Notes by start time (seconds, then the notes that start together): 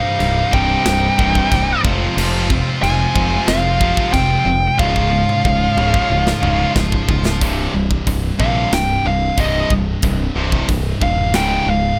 Already playing: C2 G2 C3 G3 D#4 C5 F5
0.01 G3 D#4
0.08 G3 D#4
0.16 C2 G2 G3 D#4
0.20 C1 G3, china
0.24 D#4
0.31 G3 D#4
0.39 G3 D#4
0.46 G3 D#4
0.51 C1 C2 G2 C3 G3 D#4 G5, kick
0.62 G3 D#4
0.70 G3 D#4
0.77 G3 D#4
0.84 C1 C2 G2 G3 D#4, snare, china
0.93 G3 D#4
1.01 G3 D#4
1.08 G3 D#4
1.15 C1 C2 G2 C3 G3 D#4, kick
1.24 G3 D#4
1.31 G3 D#4
1.35 G3 D#4, kick
1.46 G3 D#4
1.51 C1 C2 G2 C3 G3 D#4, kick, china
1.61 G3 D#4
1.69 G3 D#4
1.77 G3 D#4
1.83 F1 F2 C3 F3 G#3 C4 F4, kick
1.92 C4 F4
2.00 C4 F4
2.07 C4 F4
2.15 F1 F2 C3 F3 C4 F4, crash, china
2.23 C4 F4
2.31 C4 F4
2.38 C4 F4
2.46 F2 C3 C4 F4
2.50 C4, kick
2.54 F4
2.61 C4 F4
2.69 C4 F4
2.77 C4 F4
2.83 F1 F2 C3 F3 C4 F4 G#5, china
2.93 C4 F4
3.00 C4 F4
3.07 C4 F4
3.15 F1 F2 C3 F3 C4 F4, kick
3.24 C4 F4
3.30 C4 F4
3.38 C4 F4
3.46 F1 F2 C3 C4 F4 F5, snare, china
3.54 C4 F4
3.62 C4 F4
3.69 C4 F4
3.77 F2 C3 C4 F4, kick
3.81 F3
3.85 C4 F4
3.93 C4 F4
3.97 C4 F4, kick
4.08 F2 C3 C4 F4
4.13 F1 C4 F4 G5, kick, china
4.24 C4 F4
4.30 C4 F4
4.39 C4 F4
4.45 F1 F2 C3
4.78 C#1 C#2 G#2 C#3 F3 F4 C#5 F5, kick
4.87 F3 F4
4.94 F3 F4, kick
5.02 F3 F4
5.10 C#2 G#2 F3 F4
5.18 F3 F4
5.26 F3 F4, high tom
5.33 F3 F4
5.39 F3 F4
5.45 C#1 C#2 G#2, kick
5.49 F3 F4
5.55 F3 F4
5.63 F3 F4
5.72 F3 F4
5.77 C#1 C#2 G#2 C#3 F3 F4, mid tom
5.86 F3 F4
5.94 F3 F4, kick
6.03 F3 F4
6.10 C#1 C#2 G#2 F3 F4
6.18 F3 F4
6.25 F3 F4, snare
6.33 F3 F4
6.41 C#1 C#2 G#2 C#3 F3 F4, mid tom
6.49 F3 F4
6.56 F3 F4
6.64 F3 F4
6.71 F3 F4
6.76 C#1 C#2 G#2 C#3 F3, kick, snare
6.80 F4
6.87 F3 F4
6.92 F3 F4, kick
7.02 F3 F4
7.08 C#1 C#2 G#2 F3 F4, kick
7.17 F3 F4
7.25 F3 F4, snare
7.33 F3 F4
7.41 C1 C2 G2 C3, kick, open hi-hat
7.74 C1 C2 G2
7.91 kick
8.07 C1 C2 G2, kick, open hi-hat
8.39 A#1 C2 G2 C3 F5, kick
8.72 C1 C2 G2 G5, snare, open hi-hat
9.05 C1 C2 G2 F5
9.37 C1 C2 G2 C3 D#5, kick, open hi-hat
9.70 C1 C2 G2, kick
10.02 C1 C2 G2 C3, kick, open hi-hat
10.35 C1 C2 G2 C3
10.52 kick
10.68 C1 C2 G2, kick, open hi-hat
11.01 D#1 C2 G2 C3 F5, kick
11.34 C#1 C#2 G#2 C#3 G5, snare, open hi-hat
11.66 C#1 C#2 G#2 F5